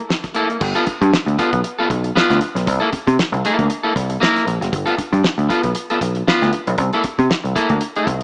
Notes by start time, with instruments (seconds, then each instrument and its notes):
0.09 muted clean electric guitar stroke, snare
0.24 muted clean electric guitar stroke, kick, snare, closed hi-hat
0.34 clean electric guitar A#3 E4 A4, closed hi-hat
0.50 muted clean electric guitar stroke, closed hi-hat
0.60 picked electric bass G1, muted clean electric guitar stroke, kick, crash
0.75 clean electric guitar B3 F4 A4, closed hi-hat
0.87 muted picked electric bass stroke, muted clean electric guitar stroke, kick, closed hi-hat
1.01 picked electric bass G2, muted clean electric guitar stroke, kick, closed hi-hat
1.13 muted clean electric guitar stroke, snare
1.26 picked electric bass D2, muted clean electric guitar stroke, closed hi-hat
1.39 clean electric guitar B3 F4 A4, kick, snare, closed hi-hat
1.53 picked electric bass B1, muted clean electric guitar stroke, kick, closed hi-hat
1.64 muted clean electric guitar stroke, closed hi-hat
1.79 clean electric guitar B3 F4 A4
1.90 picked electric bass B1, muted clean electric guitar stroke, kick, closed hi-hat
2.04 muted clean electric guitar stroke, closed hi-hat
2.15 clean electric guitar B3 F4 B4, muted picked electric bass stroke, snare
2.30 picked electric bass D2, snare, closed hi-hat
2.41 muted clean electric guitar stroke, closed hi-hat
2.55 picked electric bass B1, muted clean electric guitar stroke, snare, closed hi-hat
2.67 picked electric bass C2, muted clean electric guitar stroke, kick, closed hi-hat
2.80 clean electric guitar A#3 E4 A4
2.92 muted clean electric guitar stroke, muted picked electric bass stroke, kick, closed hi-hat
3.07 picked electric bass C3, muted clean electric guitar stroke, kick, closed hi-hat
3.19 muted clean electric guitar stroke, snare
3.32 picked electric bass C2, muted clean electric guitar stroke, closed hi-hat
3.45 clean electric guitar A#3 E4 A4, closed hi-hat
3.59 picked electric bass D2, muted clean electric guitar stroke, kick, closed hi-hat
3.70 muted clean electric guitar stroke, closed hi-hat
3.83 clean electric guitar A#3 E4 A4
3.96 picked electric bass C2, kick, closed hi-hat
4.10 muted clean electric guitar stroke, closed hi-hat
4.20 clean electric guitar A#3 E4 A#4, snare
4.36 snare, closed hi-hat
4.47 picked electric bass A#1, muted clean electric guitar stroke, closed hi-hat
4.61 picked electric bass F#1, muted clean electric guitar stroke, snare, closed hi-hat
4.72 picked electric bass G1, muted clean electric guitar stroke, kick, closed hi-hat
4.86 clean electric guitar B3 F4 A4, closed hi-hat
4.97 muted clean electric guitar stroke, muted picked electric bass stroke, kick, closed hi-hat
5.13 picked electric bass G2, muted clean electric guitar stroke, kick, closed hi-hat
5.24 muted clean electric guitar stroke, snare
5.38 picked electric bass D2, muted clean electric guitar stroke, closed hi-hat
5.49 clean electric guitar B3 F4 A4, kick, snare, closed hi-hat
5.63 picked electric bass B1, muted clean electric guitar stroke, kick, closed hi-hat
5.75 muted clean electric guitar stroke, closed hi-hat
5.90 clean electric guitar B3 F4 A4, closed hi-hat
6.01 picked electric bass B1, muted clean electric guitar stroke, kick, closed hi-hat
6.15 muted clean electric guitar stroke, closed hi-hat
6.27 clean electric guitar B3 F4 B4, muted picked electric bass stroke, snare
6.42 picked electric bass D2, snare, closed hi-hat
6.53 muted clean electric guitar stroke, closed hi-hat
6.67 picked electric bass B1, muted clean electric guitar stroke, closed hi-hat
6.78 picked electric bass C2, muted clean electric guitar stroke, kick, closed hi-hat
6.93 clean electric guitar A#3 E4 A4, closed hi-hat
7.04 muted picked electric bass stroke, kick, closed hi-hat
7.19 picked electric bass C3, muted clean electric guitar stroke, kick, closed hi-hat
7.30 muted clean electric guitar stroke, snare
7.44 picked electric bass C2, muted clean electric guitar stroke, closed hi-hat
7.55 clean electric guitar A#3 E4 A4, kick, snare, closed hi-hat
7.69 picked electric bass D2, muted clean electric guitar stroke, kick, closed hi-hat
7.81 muted clean electric guitar stroke, closed hi-hat
7.96 clean electric guitar A#3 E4 A4, closed hi-hat
8.07 picked electric bass C2, kick, closed hi-hat